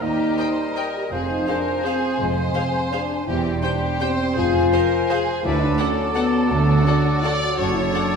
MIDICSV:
0, 0, Header, 1, 12, 480
1, 0, Start_track
1, 0, Tempo, 362976
1, 20, Time_signature, 3, 2, 24, 8
1, 6741, Tempo, 356083
1, 10873, End_track
2, 0, Start_track
2, 0, Title_t, "Flute section"
2, 0, Program_c, 0, 73
2, 0, Note_on_c, 0, 82, 51
2, 1116, Note_off_c, 0, 82, 0
2, 1478, Note_on_c, 0, 80, 60
2, 4287, Note_off_c, 0, 80, 0
2, 4332, Note_on_c, 0, 79, 66
2, 5779, Note_on_c, 0, 80, 73
2, 5781, Note_off_c, 0, 79, 0
2, 7179, Note_off_c, 0, 80, 0
2, 7206, Note_on_c, 0, 81, 75
2, 9700, Note_off_c, 0, 81, 0
2, 10089, Note_on_c, 0, 81, 72
2, 10873, Note_off_c, 0, 81, 0
2, 10873, End_track
3, 0, Start_track
3, 0, Title_t, "Violin section"
3, 0, Program_c, 1, 48
3, 502, Note_on_c, 1, 79, 47
3, 607, Note_off_c, 1, 79, 0
3, 1000, Note_on_c, 1, 79, 45
3, 1106, Note_off_c, 1, 79, 0
3, 1947, Note_on_c, 1, 77, 49
3, 2053, Note_off_c, 1, 77, 0
3, 2455, Note_on_c, 1, 77, 53
3, 2561, Note_off_c, 1, 77, 0
3, 3366, Note_on_c, 1, 77, 54
3, 3472, Note_off_c, 1, 77, 0
3, 3873, Note_on_c, 1, 77, 56
3, 3979, Note_off_c, 1, 77, 0
3, 4801, Note_on_c, 1, 79, 57
3, 4906, Note_off_c, 1, 79, 0
3, 5298, Note_on_c, 1, 79, 60
3, 5404, Note_off_c, 1, 79, 0
3, 6256, Note_on_c, 1, 77, 58
3, 6362, Note_off_c, 1, 77, 0
3, 6738, Note_on_c, 1, 77, 60
3, 6846, Note_off_c, 1, 77, 0
3, 7673, Note_on_c, 1, 78, 59
3, 7781, Note_off_c, 1, 78, 0
3, 8161, Note_on_c, 1, 78, 63
3, 8269, Note_off_c, 1, 78, 0
3, 9132, Note_on_c, 1, 78, 51
3, 9239, Note_off_c, 1, 78, 0
3, 9625, Note_on_c, 1, 78, 58
3, 9733, Note_off_c, 1, 78, 0
3, 10575, Note_on_c, 1, 78, 58
3, 10683, Note_off_c, 1, 78, 0
3, 10873, End_track
4, 0, Start_track
4, 0, Title_t, "Oboe"
4, 0, Program_c, 2, 68
4, 26, Note_on_c, 2, 75, 59
4, 1474, Note_off_c, 2, 75, 0
4, 1481, Note_on_c, 2, 72, 69
4, 3935, Note_off_c, 2, 72, 0
4, 4336, Note_on_c, 2, 72, 71
4, 7155, Note_off_c, 2, 72, 0
4, 7219, Note_on_c, 2, 74, 68
4, 10041, Note_off_c, 2, 74, 0
4, 10093, Note_on_c, 2, 74, 74
4, 10873, Note_off_c, 2, 74, 0
4, 10873, End_track
5, 0, Start_track
5, 0, Title_t, "Viola section"
5, 0, Program_c, 3, 48
5, 503, Note_on_c, 3, 75, 46
5, 504, Note_on_c, 3, 70, 50
5, 609, Note_off_c, 3, 70, 0
5, 609, Note_off_c, 3, 75, 0
5, 1008, Note_on_c, 3, 70, 49
5, 1008, Note_on_c, 3, 75, 53
5, 1114, Note_off_c, 3, 70, 0
5, 1114, Note_off_c, 3, 75, 0
5, 1953, Note_on_c, 3, 68, 51
5, 1959, Note_on_c, 3, 72, 54
5, 2059, Note_off_c, 3, 68, 0
5, 2065, Note_off_c, 3, 72, 0
5, 2432, Note_on_c, 3, 68, 56
5, 2440, Note_on_c, 3, 72, 59
5, 2538, Note_off_c, 3, 68, 0
5, 2546, Note_off_c, 3, 72, 0
5, 3368, Note_on_c, 3, 72, 57
5, 3369, Note_on_c, 3, 68, 50
5, 3474, Note_off_c, 3, 72, 0
5, 3475, Note_off_c, 3, 68, 0
5, 3865, Note_on_c, 3, 72, 63
5, 3868, Note_on_c, 3, 68, 55
5, 3971, Note_off_c, 3, 72, 0
5, 3974, Note_off_c, 3, 68, 0
5, 4798, Note_on_c, 3, 67, 59
5, 4799, Note_on_c, 3, 72, 57
5, 4903, Note_off_c, 3, 67, 0
5, 4905, Note_off_c, 3, 72, 0
5, 5288, Note_on_c, 3, 67, 65
5, 5289, Note_on_c, 3, 72, 66
5, 5394, Note_off_c, 3, 67, 0
5, 5395, Note_off_c, 3, 72, 0
5, 6244, Note_on_c, 3, 68, 58
5, 6246, Note_on_c, 3, 72, 59
5, 6350, Note_off_c, 3, 68, 0
5, 6351, Note_off_c, 3, 72, 0
5, 6733, Note_on_c, 3, 68, 63
5, 6736, Note_on_c, 3, 72, 63
5, 6840, Note_off_c, 3, 68, 0
5, 6843, Note_off_c, 3, 72, 0
5, 7671, Note_on_c, 3, 74, 69
5, 7672, Note_on_c, 3, 69, 62
5, 7779, Note_off_c, 3, 74, 0
5, 7780, Note_off_c, 3, 69, 0
5, 8176, Note_on_c, 3, 74, 63
5, 8177, Note_on_c, 3, 69, 59
5, 8283, Note_off_c, 3, 74, 0
5, 8284, Note_off_c, 3, 69, 0
5, 9134, Note_on_c, 3, 69, 63
5, 9139, Note_on_c, 3, 74, 65
5, 9242, Note_off_c, 3, 69, 0
5, 9247, Note_off_c, 3, 74, 0
5, 9632, Note_on_c, 3, 74, 61
5, 9633, Note_on_c, 3, 69, 64
5, 9740, Note_off_c, 3, 74, 0
5, 9741, Note_off_c, 3, 69, 0
5, 10565, Note_on_c, 3, 69, 56
5, 10566, Note_on_c, 3, 74, 57
5, 10673, Note_off_c, 3, 69, 0
5, 10674, Note_off_c, 3, 74, 0
5, 10873, End_track
6, 0, Start_track
6, 0, Title_t, "Clarinet"
6, 0, Program_c, 4, 71
6, 0, Note_on_c, 4, 70, 54
6, 1483, Note_on_c, 4, 72, 59
6, 1503, Note_off_c, 4, 70, 0
6, 3986, Note_off_c, 4, 72, 0
6, 4336, Note_on_c, 4, 72, 67
6, 7155, Note_off_c, 4, 72, 0
6, 7223, Note_on_c, 4, 69, 73
6, 10044, Note_off_c, 4, 69, 0
6, 10086, Note_on_c, 4, 69, 66
6, 10873, Note_off_c, 4, 69, 0
6, 10873, End_track
7, 0, Start_track
7, 0, Title_t, "Violin section"
7, 0, Program_c, 5, 48
7, 33, Note_on_c, 5, 67, 61
7, 499, Note_off_c, 5, 67, 0
7, 508, Note_on_c, 5, 72, 63
7, 1008, Note_on_c, 5, 70, 62
7, 1010, Note_off_c, 5, 72, 0
7, 1476, Note_off_c, 5, 70, 0
7, 1487, Note_on_c, 5, 68, 53
7, 1948, Note_off_c, 5, 68, 0
7, 1959, Note_on_c, 5, 70, 60
7, 2447, Note_on_c, 5, 68, 68
7, 2450, Note_off_c, 5, 70, 0
7, 2904, Note_off_c, 5, 68, 0
7, 2915, Note_on_c, 5, 72, 73
7, 4338, Note_on_c, 5, 67, 57
7, 4344, Note_off_c, 5, 72, 0
7, 4793, Note_off_c, 5, 67, 0
7, 4809, Note_on_c, 5, 67, 68
7, 5294, Note_off_c, 5, 67, 0
7, 5303, Note_on_c, 5, 72, 86
7, 5778, Note_on_c, 5, 68, 74
7, 5784, Note_off_c, 5, 72, 0
7, 6251, Note_off_c, 5, 68, 0
7, 6251, Note_on_c, 5, 70, 66
7, 6731, Note_off_c, 5, 70, 0
7, 6740, Note_on_c, 5, 68, 74
7, 7210, Note_off_c, 5, 68, 0
7, 7215, Note_on_c, 5, 71, 70
7, 7671, Note_off_c, 5, 71, 0
7, 7690, Note_on_c, 5, 69, 66
7, 8642, Note_on_c, 5, 66, 73
7, 8653, Note_off_c, 5, 69, 0
7, 9620, Note_off_c, 5, 66, 0
7, 9620, Note_on_c, 5, 74, 90
7, 10090, Note_off_c, 5, 74, 0
7, 10090, Note_on_c, 5, 73, 72
7, 10873, Note_off_c, 5, 73, 0
7, 10873, End_track
8, 0, Start_track
8, 0, Title_t, "French horn section"
8, 0, Program_c, 6, 60
8, 28, Note_on_c, 6, 63, 79
8, 991, Note_off_c, 6, 63, 0
8, 1259, Note_on_c, 6, 67, 82
8, 1359, Note_off_c, 6, 67, 0
8, 1483, Note_on_c, 6, 65, 89
8, 1705, Note_off_c, 6, 65, 0
8, 1714, Note_on_c, 6, 63, 77
8, 1943, Note_on_c, 6, 62, 78
8, 1955, Note_off_c, 6, 63, 0
8, 2441, Note_off_c, 6, 62, 0
8, 2451, Note_on_c, 6, 60, 80
8, 2899, Note_on_c, 6, 56, 85
8, 2907, Note_off_c, 6, 60, 0
8, 3347, Note_on_c, 6, 60, 78
8, 3369, Note_off_c, 6, 56, 0
8, 3855, Note_on_c, 6, 62, 87
8, 3858, Note_off_c, 6, 60, 0
8, 4322, Note_on_c, 6, 64, 94
8, 4330, Note_off_c, 6, 62, 0
8, 4790, Note_off_c, 6, 64, 0
8, 4795, Note_on_c, 6, 62, 87
8, 5296, Note_off_c, 6, 62, 0
8, 5297, Note_on_c, 6, 60, 81
8, 5778, Note_on_c, 6, 65, 107
8, 5781, Note_off_c, 6, 60, 0
8, 6720, Note_off_c, 6, 65, 0
8, 7203, Note_on_c, 6, 64, 120
8, 7417, Note_off_c, 6, 64, 0
8, 7436, Note_on_c, 6, 62, 99
8, 7671, Note_on_c, 6, 61, 95
8, 7678, Note_off_c, 6, 62, 0
8, 8150, Note_on_c, 6, 59, 96
8, 8171, Note_off_c, 6, 61, 0
8, 8625, Note_off_c, 6, 59, 0
8, 8628, Note_on_c, 6, 57, 101
8, 9105, Note_on_c, 6, 62, 90
8, 9115, Note_off_c, 6, 57, 0
8, 9612, Note_off_c, 6, 62, 0
8, 9617, Note_on_c, 6, 66, 97
8, 10040, Note_off_c, 6, 66, 0
8, 10056, Note_on_c, 6, 66, 105
8, 10299, Note_on_c, 6, 64, 96
8, 10302, Note_off_c, 6, 66, 0
8, 10539, Note_on_c, 6, 62, 95
8, 10552, Note_off_c, 6, 64, 0
8, 10873, Note_off_c, 6, 62, 0
8, 10873, End_track
9, 0, Start_track
9, 0, Title_t, "Bassoon"
9, 0, Program_c, 7, 70
9, 24, Note_on_c, 7, 55, 53
9, 1482, Note_on_c, 7, 53, 66
9, 1502, Note_off_c, 7, 55, 0
9, 3986, Note_off_c, 7, 53, 0
9, 4339, Note_on_c, 7, 55, 68
9, 5732, Note_off_c, 7, 55, 0
9, 5784, Note_on_c, 7, 53, 65
9, 7230, Note_on_c, 7, 54, 77
9, 7250, Note_off_c, 7, 53, 0
9, 10097, Note_off_c, 7, 54, 0
9, 10105, Note_on_c, 7, 54, 69
9, 10873, Note_off_c, 7, 54, 0
9, 10873, End_track
10, 0, Start_track
10, 0, Title_t, "Timpani"
10, 0, Program_c, 8, 47
10, 7214, Note_on_c, 8, 50, 64
10, 7880, Note_off_c, 8, 50, 0
10, 10873, End_track
11, 0, Start_track
11, 0, Title_t, "Cello section"
11, 0, Program_c, 10, 48
11, 10, Note_on_c, 10, 39, 62
11, 413, Note_off_c, 10, 39, 0
11, 1473, Note_on_c, 10, 41, 59
11, 1867, Note_off_c, 10, 41, 0
11, 2897, Note_on_c, 10, 41, 66
11, 3285, Note_off_c, 10, 41, 0
11, 4329, Note_on_c, 10, 40, 71
11, 4721, Note_off_c, 10, 40, 0
11, 5780, Note_on_c, 10, 41, 68
11, 6170, Note_off_c, 10, 41, 0
11, 7201, Note_on_c, 10, 38, 74
11, 7591, Note_off_c, 10, 38, 0
11, 8647, Note_on_c, 10, 38, 76
11, 9041, Note_off_c, 10, 38, 0
11, 10098, Note_on_c, 10, 42, 79
11, 10491, Note_off_c, 10, 42, 0
11, 10873, End_track
12, 0, Start_track
12, 0, Title_t, "Double bass section"
12, 0, Program_c, 11, 48
12, 13, Note_on_c, 11, 39, 60
12, 415, Note_off_c, 11, 39, 0
12, 1466, Note_on_c, 11, 29, 60
12, 1863, Note_off_c, 11, 29, 0
12, 2897, Note_on_c, 11, 29, 66
12, 3285, Note_off_c, 11, 29, 0
12, 4327, Note_on_c, 11, 28, 70
12, 4720, Note_off_c, 11, 28, 0
12, 5776, Note_on_c, 11, 29, 72
12, 6168, Note_off_c, 11, 29, 0
12, 7209, Note_on_c, 11, 38, 80
12, 7595, Note_off_c, 11, 38, 0
12, 8653, Note_on_c, 11, 38, 82
12, 9044, Note_off_c, 11, 38, 0
12, 10090, Note_on_c, 11, 30, 75
12, 10486, Note_off_c, 11, 30, 0
12, 10873, End_track
0, 0, End_of_file